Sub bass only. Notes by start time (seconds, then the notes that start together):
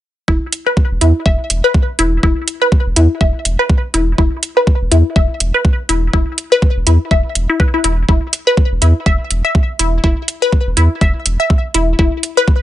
0.28 E1
0.91 E1
1.01 E2
1.26 E1
1.50 E1
1.99 E1
2.23 E1
2.86 E1
2.96 E2
3.21 E1
3.45 E1
3.94 E1
4.18 E1
4.81 E1
4.91 E2
5.16 E1
5.40 E1
5.89 E1
6.13 E1
6.76 E1
6.87 E2
7.11 E1
7.35 E1
7.84 E1
8.09 E1
8.71 E1
8.82 E2
9.06 E1
9.31 E1
9.79 E1
10.04 E1
10.67 E1
10.77 E2
11.01 E1
11.26 E1
11.74 E1
11.99 E1